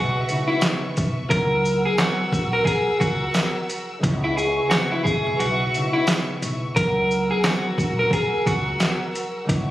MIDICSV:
0, 0, Header, 1, 7, 480
1, 0, Start_track
1, 0, Tempo, 681818
1, 918, Time_signature, 4, 2, 24, 8
1, 6833, End_track
2, 0, Start_track
2, 0, Title_t, "String section"
2, 0, Program_c, 0, 48
2, 0, Note_on_c, 0, 71, 85
2, 0, Note_on_c, 0, 76, 74
2, 0, Note_on_c, 0, 85, 91
2, 897, Note_off_c, 0, 71, 0
2, 897, Note_off_c, 0, 76, 0
2, 898, Note_off_c, 0, 85, 0
2, 918, Note_on_c, 0, 78, 76
2, 918, Note_on_c, 0, 88, 99
2, 919, Note_on_c, 0, 70, 82
2, 2819, Note_off_c, 0, 70, 0
2, 2819, Note_off_c, 0, 78, 0
2, 2819, Note_off_c, 0, 88, 0
2, 2837, Note_on_c, 0, 76, 74
2, 2837, Note_on_c, 0, 85, 92
2, 2838, Note_on_c, 0, 71, 76
2, 4738, Note_off_c, 0, 85, 0
2, 4739, Note_off_c, 0, 71, 0
2, 4739, Note_off_c, 0, 76, 0
2, 4760, Note_on_c, 0, 70, 82
2, 4761, Note_on_c, 0, 78, 72
2, 4761, Note_on_c, 0, 88, 83
2, 6660, Note_off_c, 0, 70, 0
2, 6660, Note_off_c, 0, 88, 0
2, 6661, Note_off_c, 0, 78, 0
2, 6676, Note_on_c, 0, 71, 83
2, 6676, Note_on_c, 0, 76, 75
2, 6676, Note_on_c, 0, 85, 92
2, 6833, Note_off_c, 0, 71, 0
2, 6833, Note_off_c, 0, 76, 0
2, 6833, Note_off_c, 0, 85, 0
2, 6833, End_track
3, 0, Start_track
3, 0, Title_t, "Clean electric guitar"
3, 0, Program_c, 1, 27
3, 0, Note_on_c, 1, 66, 81
3, 313, Note_off_c, 1, 66, 0
3, 336, Note_on_c, 1, 64, 81
3, 425, Note_off_c, 1, 64, 0
3, 915, Note_on_c, 1, 70, 95
3, 1278, Note_off_c, 1, 70, 0
3, 1305, Note_on_c, 1, 68, 72
3, 1390, Note_off_c, 1, 68, 0
3, 1397, Note_on_c, 1, 66, 98
3, 1759, Note_off_c, 1, 66, 0
3, 1782, Note_on_c, 1, 70, 88
3, 1865, Note_off_c, 1, 70, 0
3, 1868, Note_on_c, 1, 68, 92
3, 2088, Note_off_c, 1, 68, 0
3, 2112, Note_on_c, 1, 66, 83
3, 2476, Note_off_c, 1, 66, 0
3, 2985, Note_on_c, 1, 64, 81
3, 3070, Note_off_c, 1, 64, 0
3, 3077, Note_on_c, 1, 68, 77
3, 3293, Note_off_c, 1, 68, 0
3, 3307, Note_on_c, 1, 66, 87
3, 3442, Note_off_c, 1, 66, 0
3, 3462, Note_on_c, 1, 64, 78
3, 3547, Note_off_c, 1, 64, 0
3, 3549, Note_on_c, 1, 68, 93
3, 3769, Note_off_c, 1, 68, 0
3, 3798, Note_on_c, 1, 66, 94
3, 4159, Note_off_c, 1, 66, 0
3, 4177, Note_on_c, 1, 64, 79
3, 4266, Note_off_c, 1, 64, 0
3, 4759, Note_on_c, 1, 70, 91
3, 5120, Note_off_c, 1, 70, 0
3, 5144, Note_on_c, 1, 68, 73
3, 5229, Note_off_c, 1, 68, 0
3, 5242, Note_on_c, 1, 66, 87
3, 5602, Note_off_c, 1, 66, 0
3, 5626, Note_on_c, 1, 70, 73
3, 5710, Note_off_c, 1, 70, 0
3, 5724, Note_on_c, 1, 68, 83
3, 5937, Note_off_c, 1, 68, 0
3, 5960, Note_on_c, 1, 66, 84
3, 6321, Note_off_c, 1, 66, 0
3, 6833, End_track
4, 0, Start_track
4, 0, Title_t, "Harp"
4, 0, Program_c, 2, 46
4, 0, Note_on_c, 2, 49, 68
4, 0, Note_on_c, 2, 56, 66
4, 0, Note_on_c, 2, 59, 64
4, 0, Note_on_c, 2, 64, 79
4, 192, Note_off_c, 2, 49, 0
4, 197, Note_off_c, 2, 56, 0
4, 200, Note_on_c, 2, 49, 52
4, 206, Note_on_c, 2, 56, 46
4, 208, Note_off_c, 2, 59, 0
4, 211, Note_on_c, 2, 59, 46
4, 216, Note_on_c, 2, 63, 48
4, 258, Note_off_c, 2, 64, 0
4, 262, Note_off_c, 2, 63, 0
4, 262, Note_on_c, 2, 64, 55
4, 910, Note_on_c, 2, 54, 67
4, 925, Note_on_c, 2, 58, 68
4, 937, Note_off_c, 2, 64, 0
4, 939, Note_on_c, 2, 64, 69
4, 953, Note_off_c, 2, 49, 0
4, 953, Note_off_c, 2, 56, 0
4, 967, Note_off_c, 2, 59, 0
4, 2809, Note_on_c, 2, 49, 69
4, 2819, Note_on_c, 2, 56, 64
4, 2821, Note_off_c, 2, 64, 0
4, 2829, Note_on_c, 2, 59, 63
4, 2839, Note_on_c, 2, 64, 78
4, 2871, Note_off_c, 2, 58, 0
4, 2873, Note_off_c, 2, 54, 0
4, 4031, Note_off_c, 2, 49, 0
4, 4035, Note_off_c, 2, 56, 0
4, 4039, Note_on_c, 2, 49, 51
4, 4044, Note_on_c, 2, 56, 46
4, 4046, Note_off_c, 2, 59, 0
4, 4049, Note_on_c, 2, 59, 46
4, 4054, Note_on_c, 2, 63, 44
4, 4096, Note_off_c, 2, 64, 0
4, 4100, Note_on_c, 2, 64, 55
4, 4101, Note_off_c, 2, 63, 0
4, 4748, Note_on_c, 2, 54, 72
4, 4763, Note_on_c, 2, 58, 70
4, 4776, Note_off_c, 2, 64, 0
4, 4779, Note_on_c, 2, 64, 69
4, 4793, Note_off_c, 2, 49, 0
4, 4793, Note_off_c, 2, 56, 0
4, 4805, Note_off_c, 2, 59, 0
4, 6650, Note_on_c, 2, 49, 71
4, 6660, Note_off_c, 2, 64, 0
4, 6660, Note_on_c, 2, 56, 64
4, 6670, Note_on_c, 2, 59, 64
4, 6681, Note_on_c, 2, 64, 78
4, 6713, Note_off_c, 2, 54, 0
4, 6713, Note_off_c, 2, 58, 0
4, 6833, Note_off_c, 2, 49, 0
4, 6833, Note_off_c, 2, 56, 0
4, 6833, Note_off_c, 2, 59, 0
4, 6833, Note_off_c, 2, 64, 0
4, 6833, End_track
5, 0, Start_track
5, 0, Title_t, "Upright bass"
5, 0, Program_c, 3, 32
5, 0, Note_on_c, 3, 35, 97
5, 140, Note_off_c, 3, 35, 0
5, 687, Note_on_c, 3, 35, 95
5, 797, Note_off_c, 3, 35, 0
5, 920, Note_on_c, 3, 37, 108
5, 1296, Note_off_c, 3, 37, 0
5, 1636, Note_on_c, 3, 34, 95
5, 1825, Note_off_c, 3, 34, 0
5, 2117, Note_on_c, 3, 37, 100
5, 2306, Note_off_c, 3, 37, 0
5, 2840, Note_on_c, 3, 37, 115
5, 3216, Note_off_c, 3, 37, 0
5, 3706, Note_on_c, 3, 35, 92
5, 3779, Note_off_c, 3, 35, 0
5, 3801, Note_on_c, 3, 35, 97
5, 3989, Note_off_c, 3, 35, 0
5, 4521, Note_on_c, 3, 35, 94
5, 4634, Note_off_c, 3, 35, 0
5, 4761, Note_on_c, 3, 37, 108
5, 5137, Note_off_c, 3, 37, 0
5, 5477, Note_on_c, 3, 34, 99
5, 5666, Note_off_c, 3, 34, 0
5, 5960, Note_on_c, 3, 37, 100
5, 6148, Note_off_c, 3, 37, 0
5, 6682, Note_on_c, 3, 37, 111
5, 6833, Note_off_c, 3, 37, 0
5, 6833, End_track
6, 0, Start_track
6, 0, Title_t, "Muted upright bass strokes"
6, 2026, Note_on_c, 9, 29, 49
6, 2096, Note_off_c, 9, 29, 0
6, 5865, Note_on_c, 9, 29, 49
6, 5935, Note_off_c, 9, 29, 0
6, 6833, End_track
7, 0, Start_track
7, 0, Title_t, "Drums"
7, 202, Note_on_c, 9, 42, 45
7, 202, Note_on_c, 9, 82, 46
7, 273, Note_off_c, 9, 42, 0
7, 273, Note_off_c, 9, 82, 0
7, 432, Note_on_c, 9, 54, 74
7, 437, Note_on_c, 9, 38, 116
7, 443, Note_on_c, 9, 39, 93
7, 443, Note_on_c, 9, 42, 85
7, 502, Note_off_c, 9, 54, 0
7, 507, Note_off_c, 9, 38, 0
7, 513, Note_off_c, 9, 42, 0
7, 514, Note_off_c, 9, 39, 0
7, 682, Note_on_c, 9, 42, 56
7, 682, Note_on_c, 9, 82, 54
7, 685, Note_on_c, 9, 36, 89
7, 752, Note_off_c, 9, 42, 0
7, 752, Note_off_c, 9, 82, 0
7, 756, Note_off_c, 9, 36, 0
7, 918, Note_on_c, 9, 36, 120
7, 922, Note_on_c, 9, 42, 93
7, 989, Note_off_c, 9, 36, 0
7, 992, Note_off_c, 9, 42, 0
7, 1163, Note_on_c, 9, 82, 56
7, 1233, Note_off_c, 9, 82, 0
7, 1394, Note_on_c, 9, 54, 76
7, 1397, Note_on_c, 9, 38, 122
7, 1403, Note_on_c, 9, 39, 101
7, 1406, Note_on_c, 9, 42, 76
7, 1464, Note_off_c, 9, 54, 0
7, 1467, Note_off_c, 9, 38, 0
7, 1474, Note_off_c, 9, 39, 0
7, 1477, Note_off_c, 9, 42, 0
7, 1634, Note_on_c, 9, 36, 94
7, 1644, Note_on_c, 9, 82, 52
7, 1705, Note_off_c, 9, 36, 0
7, 1715, Note_off_c, 9, 82, 0
7, 1866, Note_on_c, 9, 36, 89
7, 1881, Note_on_c, 9, 42, 76
7, 1936, Note_off_c, 9, 36, 0
7, 1951, Note_off_c, 9, 42, 0
7, 2116, Note_on_c, 9, 36, 98
7, 2121, Note_on_c, 9, 42, 46
7, 2121, Note_on_c, 9, 82, 45
7, 2187, Note_off_c, 9, 36, 0
7, 2191, Note_off_c, 9, 42, 0
7, 2191, Note_off_c, 9, 82, 0
7, 2351, Note_on_c, 9, 54, 71
7, 2356, Note_on_c, 9, 38, 114
7, 2362, Note_on_c, 9, 39, 96
7, 2362, Note_on_c, 9, 42, 82
7, 2422, Note_off_c, 9, 54, 0
7, 2426, Note_off_c, 9, 38, 0
7, 2432, Note_off_c, 9, 39, 0
7, 2432, Note_off_c, 9, 42, 0
7, 2602, Note_on_c, 9, 42, 56
7, 2602, Note_on_c, 9, 82, 54
7, 2672, Note_off_c, 9, 42, 0
7, 2672, Note_off_c, 9, 82, 0
7, 2839, Note_on_c, 9, 36, 116
7, 2842, Note_on_c, 9, 42, 89
7, 2909, Note_off_c, 9, 36, 0
7, 2913, Note_off_c, 9, 42, 0
7, 3083, Note_on_c, 9, 82, 54
7, 3154, Note_off_c, 9, 82, 0
7, 3314, Note_on_c, 9, 54, 76
7, 3317, Note_on_c, 9, 38, 123
7, 3324, Note_on_c, 9, 39, 99
7, 3327, Note_on_c, 9, 42, 78
7, 3384, Note_off_c, 9, 54, 0
7, 3387, Note_off_c, 9, 38, 0
7, 3394, Note_off_c, 9, 39, 0
7, 3397, Note_off_c, 9, 42, 0
7, 3555, Note_on_c, 9, 36, 96
7, 3566, Note_on_c, 9, 82, 49
7, 3626, Note_off_c, 9, 36, 0
7, 3636, Note_off_c, 9, 82, 0
7, 3803, Note_on_c, 9, 42, 76
7, 3873, Note_off_c, 9, 42, 0
7, 4043, Note_on_c, 9, 42, 45
7, 4043, Note_on_c, 9, 82, 44
7, 4114, Note_off_c, 9, 42, 0
7, 4114, Note_off_c, 9, 82, 0
7, 4273, Note_on_c, 9, 54, 72
7, 4278, Note_on_c, 9, 38, 112
7, 4285, Note_on_c, 9, 39, 91
7, 4285, Note_on_c, 9, 42, 84
7, 4344, Note_off_c, 9, 54, 0
7, 4349, Note_off_c, 9, 38, 0
7, 4355, Note_off_c, 9, 39, 0
7, 4355, Note_off_c, 9, 42, 0
7, 4523, Note_on_c, 9, 42, 56
7, 4523, Note_on_c, 9, 82, 57
7, 4593, Note_off_c, 9, 42, 0
7, 4593, Note_off_c, 9, 82, 0
7, 4760, Note_on_c, 9, 36, 117
7, 4763, Note_on_c, 9, 42, 91
7, 4830, Note_off_c, 9, 36, 0
7, 4834, Note_off_c, 9, 42, 0
7, 5005, Note_on_c, 9, 82, 53
7, 5075, Note_off_c, 9, 82, 0
7, 5235, Note_on_c, 9, 54, 79
7, 5238, Note_on_c, 9, 38, 123
7, 5244, Note_on_c, 9, 39, 99
7, 5248, Note_on_c, 9, 42, 79
7, 5306, Note_off_c, 9, 54, 0
7, 5308, Note_off_c, 9, 38, 0
7, 5315, Note_off_c, 9, 39, 0
7, 5318, Note_off_c, 9, 42, 0
7, 5476, Note_on_c, 9, 36, 94
7, 5487, Note_on_c, 9, 82, 52
7, 5546, Note_off_c, 9, 36, 0
7, 5557, Note_off_c, 9, 82, 0
7, 5707, Note_on_c, 9, 36, 94
7, 5723, Note_on_c, 9, 42, 78
7, 5778, Note_off_c, 9, 36, 0
7, 5793, Note_off_c, 9, 42, 0
7, 5958, Note_on_c, 9, 36, 95
7, 5963, Note_on_c, 9, 42, 44
7, 5963, Note_on_c, 9, 82, 45
7, 6028, Note_off_c, 9, 36, 0
7, 6033, Note_off_c, 9, 42, 0
7, 6033, Note_off_c, 9, 82, 0
7, 6194, Note_on_c, 9, 54, 71
7, 6197, Note_on_c, 9, 38, 116
7, 6204, Note_on_c, 9, 39, 92
7, 6204, Note_on_c, 9, 42, 83
7, 6264, Note_off_c, 9, 54, 0
7, 6268, Note_off_c, 9, 38, 0
7, 6274, Note_off_c, 9, 39, 0
7, 6274, Note_off_c, 9, 42, 0
7, 6444, Note_on_c, 9, 42, 56
7, 6444, Note_on_c, 9, 82, 56
7, 6515, Note_off_c, 9, 42, 0
7, 6515, Note_off_c, 9, 82, 0
7, 6680, Note_on_c, 9, 36, 117
7, 6684, Note_on_c, 9, 42, 93
7, 6750, Note_off_c, 9, 36, 0
7, 6754, Note_off_c, 9, 42, 0
7, 6833, End_track
0, 0, End_of_file